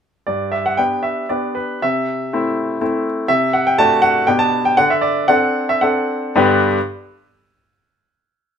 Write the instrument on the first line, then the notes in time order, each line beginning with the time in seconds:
grand piano
0.27 G2 D5
0.52 E5
0.66 F#5
0.77 B3 D4 G4 G5
1.03 E5
1.29 B3 D4 G4 D5
1.55 B4
1.82 C3 E5
2.33 A3 C4 E4
2.81 A3 C4 E4
3.28 C3 E5
3.53 F#5
3.67 G5
3.79 A3 D4 F#4 A5
4.02 F#5
4.27 B2 B3 D4 G4 G5
4.39 A5
4.65 G5
4.77 D3 F#5
4.90 E5
5.01 D5
5.28 C4 D4 A4 F#5
5.69 E5
5.81 C4 D4 A4 F#5
6.36 G2 D3 B3 D4 G4 B4 B5